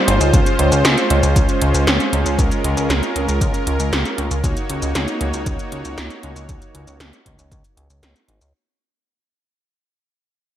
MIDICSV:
0, 0, Header, 1, 4, 480
1, 0, Start_track
1, 0, Tempo, 512821
1, 314, Time_signature, 4, 2, 24, 8
1, 9893, End_track
2, 0, Start_track
2, 0, Title_t, "Supersaw synth"
2, 0, Program_c, 0, 81
2, 0, Note_on_c, 0, 55, 90
2, 0, Note_on_c, 0, 63, 80
2, 0, Note_on_c, 0, 65, 82
2, 0, Note_on_c, 0, 72, 98
2, 277, Note_off_c, 0, 63, 0
2, 278, Note_off_c, 0, 55, 0
2, 315, Note_on_c, 0, 56, 92
2, 315, Note_on_c, 0, 61, 81
2, 2197, Note_off_c, 0, 72, 0
2, 2233, Note_on_c, 0, 70, 102
2, 4117, Note_off_c, 0, 56, 0
2, 4117, Note_off_c, 0, 61, 0
2, 4117, Note_off_c, 0, 65, 0
2, 4135, Note_off_c, 0, 70, 0
2, 4154, Note_on_c, 0, 58, 87
2, 4154, Note_on_c, 0, 63, 84
2, 4154, Note_on_c, 0, 66, 80
2, 4154, Note_on_c, 0, 73, 98
2, 7957, Note_off_c, 0, 58, 0
2, 7957, Note_off_c, 0, 63, 0
2, 7957, Note_off_c, 0, 66, 0
2, 7957, Note_off_c, 0, 73, 0
2, 9893, End_track
3, 0, Start_track
3, 0, Title_t, "Analog synth bass"
3, 0, Program_c, 1, 38
3, 73, Note_on_c, 1, 31, 100
3, 183, Note_off_c, 1, 31, 0
3, 191, Note_on_c, 1, 37, 84
3, 303, Note_off_c, 1, 37, 0
3, 313, Note_on_c, 1, 37, 100
3, 423, Note_off_c, 1, 37, 0
3, 552, Note_on_c, 1, 37, 99
3, 663, Note_off_c, 1, 37, 0
3, 671, Note_on_c, 1, 37, 83
3, 783, Note_off_c, 1, 37, 0
3, 792, Note_on_c, 1, 37, 100
3, 903, Note_off_c, 1, 37, 0
3, 1034, Note_on_c, 1, 37, 92
3, 1144, Note_off_c, 1, 37, 0
3, 1152, Note_on_c, 1, 37, 86
3, 1263, Note_off_c, 1, 37, 0
3, 1273, Note_on_c, 1, 37, 104
3, 1383, Note_off_c, 1, 37, 0
3, 1512, Note_on_c, 1, 37, 94
3, 1623, Note_off_c, 1, 37, 0
3, 1632, Note_on_c, 1, 37, 84
3, 1743, Note_off_c, 1, 37, 0
3, 1753, Note_on_c, 1, 37, 103
3, 1863, Note_off_c, 1, 37, 0
3, 1992, Note_on_c, 1, 37, 99
3, 2103, Note_off_c, 1, 37, 0
3, 2113, Note_on_c, 1, 37, 86
3, 2224, Note_off_c, 1, 37, 0
3, 2233, Note_on_c, 1, 37, 100
3, 2343, Note_off_c, 1, 37, 0
3, 2474, Note_on_c, 1, 37, 96
3, 2584, Note_off_c, 1, 37, 0
3, 2593, Note_on_c, 1, 37, 82
3, 2703, Note_off_c, 1, 37, 0
3, 2713, Note_on_c, 1, 37, 99
3, 2823, Note_off_c, 1, 37, 0
3, 2954, Note_on_c, 1, 37, 96
3, 3064, Note_off_c, 1, 37, 0
3, 3074, Note_on_c, 1, 37, 84
3, 3184, Note_off_c, 1, 37, 0
3, 3192, Note_on_c, 1, 37, 112
3, 3303, Note_off_c, 1, 37, 0
3, 3434, Note_on_c, 1, 37, 94
3, 3544, Note_off_c, 1, 37, 0
3, 3554, Note_on_c, 1, 37, 83
3, 3664, Note_off_c, 1, 37, 0
3, 3674, Note_on_c, 1, 37, 99
3, 3784, Note_off_c, 1, 37, 0
3, 3913, Note_on_c, 1, 37, 100
3, 4024, Note_off_c, 1, 37, 0
3, 4035, Note_on_c, 1, 37, 84
3, 4144, Note_off_c, 1, 37, 0
3, 4153, Note_on_c, 1, 37, 96
3, 4264, Note_off_c, 1, 37, 0
3, 4395, Note_on_c, 1, 37, 95
3, 4504, Note_off_c, 1, 37, 0
3, 4515, Note_on_c, 1, 37, 82
3, 4624, Note_off_c, 1, 37, 0
3, 4635, Note_on_c, 1, 37, 99
3, 4744, Note_off_c, 1, 37, 0
3, 4876, Note_on_c, 1, 37, 90
3, 4985, Note_off_c, 1, 37, 0
3, 4994, Note_on_c, 1, 37, 88
3, 5104, Note_off_c, 1, 37, 0
3, 5113, Note_on_c, 1, 37, 107
3, 5223, Note_off_c, 1, 37, 0
3, 5355, Note_on_c, 1, 37, 94
3, 5464, Note_off_c, 1, 37, 0
3, 5475, Note_on_c, 1, 37, 83
3, 5584, Note_off_c, 1, 37, 0
3, 5595, Note_on_c, 1, 37, 102
3, 5705, Note_off_c, 1, 37, 0
3, 5834, Note_on_c, 1, 37, 101
3, 5944, Note_off_c, 1, 37, 0
3, 5953, Note_on_c, 1, 37, 84
3, 6063, Note_off_c, 1, 37, 0
3, 6073, Note_on_c, 1, 37, 98
3, 6183, Note_off_c, 1, 37, 0
3, 6314, Note_on_c, 1, 37, 99
3, 6424, Note_off_c, 1, 37, 0
3, 6433, Note_on_c, 1, 37, 84
3, 6544, Note_off_c, 1, 37, 0
3, 6553, Note_on_c, 1, 37, 103
3, 6664, Note_off_c, 1, 37, 0
3, 6793, Note_on_c, 1, 37, 98
3, 6904, Note_off_c, 1, 37, 0
3, 6914, Note_on_c, 1, 37, 84
3, 7024, Note_off_c, 1, 37, 0
3, 7034, Note_on_c, 1, 37, 108
3, 7144, Note_off_c, 1, 37, 0
3, 7272, Note_on_c, 1, 37, 94
3, 7383, Note_off_c, 1, 37, 0
3, 7394, Note_on_c, 1, 37, 81
3, 7504, Note_off_c, 1, 37, 0
3, 7512, Note_on_c, 1, 37, 102
3, 7623, Note_off_c, 1, 37, 0
3, 7754, Note_on_c, 1, 32, 99
3, 7864, Note_off_c, 1, 32, 0
3, 7874, Note_on_c, 1, 37, 86
3, 7984, Note_off_c, 1, 37, 0
3, 9893, End_track
4, 0, Start_track
4, 0, Title_t, "Drums"
4, 75, Note_on_c, 9, 42, 100
4, 168, Note_off_c, 9, 42, 0
4, 195, Note_on_c, 9, 42, 41
4, 195, Note_on_c, 9, 82, 58
4, 288, Note_off_c, 9, 42, 0
4, 288, Note_off_c, 9, 82, 0
4, 313, Note_on_c, 9, 36, 121
4, 315, Note_on_c, 9, 42, 63
4, 315, Note_on_c, 9, 82, 49
4, 406, Note_off_c, 9, 36, 0
4, 408, Note_off_c, 9, 42, 0
4, 408, Note_off_c, 9, 82, 0
4, 434, Note_on_c, 9, 42, 37
4, 434, Note_on_c, 9, 82, 29
4, 528, Note_off_c, 9, 42, 0
4, 528, Note_off_c, 9, 82, 0
4, 553, Note_on_c, 9, 42, 90
4, 647, Note_off_c, 9, 42, 0
4, 673, Note_on_c, 9, 42, 39
4, 673, Note_on_c, 9, 82, 60
4, 767, Note_off_c, 9, 42, 0
4, 767, Note_off_c, 9, 82, 0
4, 794, Note_on_c, 9, 38, 122
4, 794, Note_on_c, 9, 42, 65
4, 794, Note_on_c, 9, 82, 48
4, 887, Note_off_c, 9, 38, 0
4, 887, Note_off_c, 9, 42, 0
4, 887, Note_off_c, 9, 82, 0
4, 914, Note_on_c, 9, 42, 39
4, 914, Note_on_c, 9, 82, 30
4, 1008, Note_off_c, 9, 42, 0
4, 1008, Note_off_c, 9, 82, 0
4, 1033, Note_on_c, 9, 42, 88
4, 1126, Note_off_c, 9, 42, 0
4, 1153, Note_on_c, 9, 42, 38
4, 1153, Note_on_c, 9, 82, 57
4, 1247, Note_off_c, 9, 42, 0
4, 1247, Note_off_c, 9, 82, 0
4, 1273, Note_on_c, 9, 36, 117
4, 1274, Note_on_c, 9, 42, 64
4, 1274, Note_on_c, 9, 82, 48
4, 1367, Note_off_c, 9, 36, 0
4, 1367, Note_off_c, 9, 42, 0
4, 1367, Note_off_c, 9, 82, 0
4, 1392, Note_on_c, 9, 42, 38
4, 1392, Note_on_c, 9, 82, 30
4, 1486, Note_off_c, 9, 42, 0
4, 1486, Note_off_c, 9, 82, 0
4, 1512, Note_on_c, 9, 42, 91
4, 1606, Note_off_c, 9, 42, 0
4, 1633, Note_on_c, 9, 42, 38
4, 1633, Note_on_c, 9, 82, 59
4, 1726, Note_off_c, 9, 42, 0
4, 1726, Note_off_c, 9, 82, 0
4, 1753, Note_on_c, 9, 38, 118
4, 1753, Note_on_c, 9, 42, 64
4, 1753, Note_on_c, 9, 82, 46
4, 1847, Note_off_c, 9, 38, 0
4, 1847, Note_off_c, 9, 42, 0
4, 1847, Note_off_c, 9, 82, 0
4, 1874, Note_on_c, 9, 42, 37
4, 1874, Note_on_c, 9, 82, 27
4, 1968, Note_off_c, 9, 42, 0
4, 1968, Note_off_c, 9, 82, 0
4, 1994, Note_on_c, 9, 42, 94
4, 2088, Note_off_c, 9, 42, 0
4, 2114, Note_on_c, 9, 42, 38
4, 2114, Note_on_c, 9, 82, 58
4, 2208, Note_off_c, 9, 42, 0
4, 2208, Note_off_c, 9, 82, 0
4, 2233, Note_on_c, 9, 36, 119
4, 2235, Note_on_c, 9, 42, 63
4, 2235, Note_on_c, 9, 82, 49
4, 2327, Note_off_c, 9, 36, 0
4, 2329, Note_off_c, 9, 42, 0
4, 2329, Note_off_c, 9, 82, 0
4, 2355, Note_on_c, 9, 42, 39
4, 2355, Note_on_c, 9, 82, 29
4, 2449, Note_off_c, 9, 42, 0
4, 2449, Note_off_c, 9, 82, 0
4, 2475, Note_on_c, 9, 42, 92
4, 2569, Note_off_c, 9, 42, 0
4, 2596, Note_on_c, 9, 42, 38
4, 2596, Note_on_c, 9, 82, 60
4, 2689, Note_off_c, 9, 42, 0
4, 2689, Note_off_c, 9, 82, 0
4, 2715, Note_on_c, 9, 38, 115
4, 2715, Note_on_c, 9, 42, 62
4, 2715, Note_on_c, 9, 82, 49
4, 2809, Note_off_c, 9, 38, 0
4, 2809, Note_off_c, 9, 42, 0
4, 2809, Note_off_c, 9, 82, 0
4, 2836, Note_on_c, 9, 42, 40
4, 2836, Note_on_c, 9, 82, 31
4, 2929, Note_off_c, 9, 42, 0
4, 2929, Note_off_c, 9, 82, 0
4, 2956, Note_on_c, 9, 42, 88
4, 3050, Note_off_c, 9, 42, 0
4, 3076, Note_on_c, 9, 42, 39
4, 3076, Note_on_c, 9, 82, 59
4, 3170, Note_off_c, 9, 42, 0
4, 3170, Note_off_c, 9, 82, 0
4, 3193, Note_on_c, 9, 36, 116
4, 3196, Note_on_c, 9, 42, 65
4, 3196, Note_on_c, 9, 82, 50
4, 3287, Note_off_c, 9, 36, 0
4, 3289, Note_off_c, 9, 42, 0
4, 3289, Note_off_c, 9, 82, 0
4, 3315, Note_on_c, 9, 42, 40
4, 3315, Note_on_c, 9, 82, 30
4, 3409, Note_off_c, 9, 42, 0
4, 3409, Note_off_c, 9, 82, 0
4, 3435, Note_on_c, 9, 42, 91
4, 3529, Note_off_c, 9, 42, 0
4, 3555, Note_on_c, 9, 42, 38
4, 3555, Note_on_c, 9, 82, 60
4, 3648, Note_off_c, 9, 42, 0
4, 3648, Note_off_c, 9, 82, 0
4, 3676, Note_on_c, 9, 38, 115
4, 3676, Note_on_c, 9, 42, 65
4, 3676, Note_on_c, 9, 82, 50
4, 3770, Note_off_c, 9, 38, 0
4, 3770, Note_off_c, 9, 42, 0
4, 3770, Note_off_c, 9, 82, 0
4, 3795, Note_on_c, 9, 42, 37
4, 3795, Note_on_c, 9, 82, 29
4, 3889, Note_off_c, 9, 42, 0
4, 3889, Note_off_c, 9, 82, 0
4, 3915, Note_on_c, 9, 42, 92
4, 4008, Note_off_c, 9, 42, 0
4, 4035, Note_on_c, 9, 42, 38
4, 4035, Note_on_c, 9, 82, 62
4, 4129, Note_off_c, 9, 42, 0
4, 4129, Note_off_c, 9, 82, 0
4, 4153, Note_on_c, 9, 36, 119
4, 4156, Note_on_c, 9, 42, 64
4, 4156, Note_on_c, 9, 82, 52
4, 4247, Note_off_c, 9, 36, 0
4, 4250, Note_off_c, 9, 42, 0
4, 4250, Note_off_c, 9, 82, 0
4, 4275, Note_on_c, 9, 42, 39
4, 4275, Note_on_c, 9, 82, 30
4, 4368, Note_off_c, 9, 42, 0
4, 4368, Note_off_c, 9, 82, 0
4, 4395, Note_on_c, 9, 42, 95
4, 4488, Note_off_c, 9, 42, 0
4, 4515, Note_on_c, 9, 42, 41
4, 4515, Note_on_c, 9, 82, 63
4, 4608, Note_off_c, 9, 42, 0
4, 4608, Note_off_c, 9, 82, 0
4, 4635, Note_on_c, 9, 38, 114
4, 4635, Note_on_c, 9, 42, 64
4, 4635, Note_on_c, 9, 82, 53
4, 4729, Note_off_c, 9, 38, 0
4, 4729, Note_off_c, 9, 42, 0
4, 4729, Note_off_c, 9, 82, 0
4, 4754, Note_on_c, 9, 42, 39
4, 4754, Note_on_c, 9, 82, 31
4, 4848, Note_off_c, 9, 42, 0
4, 4848, Note_off_c, 9, 82, 0
4, 4874, Note_on_c, 9, 42, 89
4, 4968, Note_off_c, 9, 42, 0
4, 4994, Note_on_c, 9, 42, 38
4, 4994, Note_on_c, 9, 82, 62
4, 5088, Note_off_c, 9, 42, 0
4, 5088, Note_off_c, 9, 82, 0
4, 5113, Note_on_c, 9, 36, 116
4, 5114, Note_on_c, 9, 42, 70
4, 5114, Note_on_c, 9, 82, 53
4, 5207, Note_off_c, 9, 36, 0
4, 5208, Note_off_c, 9, 42, 0
4, 5208, Note_off_c, 9, 82, 0
4, 5235, Note_on_c, 9, 42, 41
4, 5235, Note_on_c, 9, 82, 32
4, 5329, Note_off_c, 9, 42, 0
4, 5329, Note_off_c, 9, 82, 0
4, 5355, Note_on_c, 9, 42, 94
4, 5448, Note_off_c, 9, 42, 0
4, 5475, Note_on_c, 9, 42, 39
4, 5475, Note_on_c, 9, 82, 62
4, 5568, Note_off_c, 9, 42, 0
4, 5568, Note_off_c, 9, 82, 0
4, 5595, Note_on_c, 9, 38, 114
4, 5595, Note_on_c, 9, 42, 62
4, 5595, Note_on_c, 9, 82, 50
4, 5688, Note_off_c, 9, 38, 0
4, 5688, Note_off_c, 9, 42, 0
4, 5688, Note_off_c, 9, 82, 0
4, 5714, Note_on_c, 9, 42, 38
4, 5714, Note_on_c, 9, 82, 29
4, 5807, Note_off_c, 9, 42, 0
4, 5807, Note_off_c, 9, 82, 0
4, 5834, Note_on_c, 9, 42, 96
4, 5927, Note_off_c, 9, 42, 0
4, 5954, Note_on_c, 9, 42, 41
4, 5954, Note_on_c, 9, 82, 63
4, 6048, Note_off_c, 9, 42, 0
4, 6048, Note_off_c, 9, 82, 0
4, 6074, Note_on_c, 9, 36, 119
4, 6074, Note_on_c, 9, 42, 67
4, 6074, Note_on_c, 9, 82, 54
4, 6167, Note_off_c, 9, 36, 0
4, 6167, Note_off_c, 9, 42, 0
4, 6167, Note_off_c, 9, 82, 0
4, 6195, Note_on_c, 9, 42, 41
4, 6195, Note_on_c, 9, 82, 31
4, 6288, Note_off_c, 9, 42, 0
4, 6288, Note_off_c, 9, 82, 0
4, 6315, Note_on_c, 9, 42, 98
4, 6409, Note_off_c, 9, 42, 0
4, 6434, Note_on_c, 9, 42, 40
4, 6434, Note_on_c, 9, 82, 64
4, 6528, Note_off_c, 9, 42, 0
4, 6528, Note_off_c, 9, 82, 0
4, 6554, Note_on_c, 9, 38, 117
4, 6554, Note_on_c, 9, 42, 68
4, 6554, Note_on_c, 9, 82, 54
4, 6648, Note_off_c, 9, 38, 0
4, 6648, Note_off_c, 9, 42, 0
4, 6648, Note_off_c, 9, 82, 0
4, 6675, Note_on_c, 9, 42, 42
4, 6675, Note_on_c, 9, 82, 31
4, 6769, Note_off_c, 9, 42, 0
4, 6769, Note_off_c, 9, 82, 0
4, 6794, Note_on_c, 9, 36, 60
4, 6796, Note_on_c, 9, 42, 93
4, 6888, Note_off_c, 9, 36, 0
4, 6889, Note_off_c, 9, 42, 0
4, 6916, Note_on_c, 9, 42, 41
4, 6916, Note_on_c, 9, 82, 64
4, 7009, Note_off_c, 9, 42, 0
4, 7009, Note_off_c, 9, 82, 0
4, 7034, Note_on_c, 9, 36, 116
4, 7037, Note_on_c, 9, 42, 71
4, 7037, Note_on_c, 9, 82, 55
4, 7128, Note_off_c, 9, 36, 0
4, 7130, Note_off_c, 9, 42, 0
4, 7130, Note_off_c, 9, 82, 0
4, 7156, Note_on_c, 9, 42, 43
4, 7156, Note_on_c, 9, 82, 32
4, 7250, Note_off_c, 9, 42, 0
4, 7250, Note_off_c, 9, 82, 0
4, 7276, Note_on_c, 9, 42, 95
4, 7370, Note_off_c, 9, 42, 0
4, 7396, Note_on_c, 9, 42, 41
4, 7396, Note_on_c, 9, 82, 64
4, 7490, Note_off_c, 9, 42, 0
4, 7490, Note_off_c, 9, 82, 0
4, 7516, Note_on_c, 9, 38, 116
4, 7516, Note_on_c, 9, 42, 68
4, 7516, Note_on_c, 9, 82, 52
4, 7610, Note_off_c, 9, 38, 0
4, 7610, Note_off_c, 9, 42, 0
4, 7610, Note_off_c, 9, 82, 0
4, 7636, Note_on_c, 9, 42, 40
4, 7636, Note_on_c, 9, 82, 30
4, 7730, Note_off_c, 9, 42, 0
4, 7730, Note_off_c, 9, 82, 0
4, 7755, Note_on_c, 9, 42, 99
4, 7848, Note_off_c, 9, 42, 0
4, 7875, Note_on_c, 9, 42, 41
4, 7875, Note_on_c, 9, 82, 65
4, 7969, Note_off_c, 9, 42, 0
4, 7969, Note_off_c, 9, 82, 0
4, 9893, End_track
0, 0, End_of_file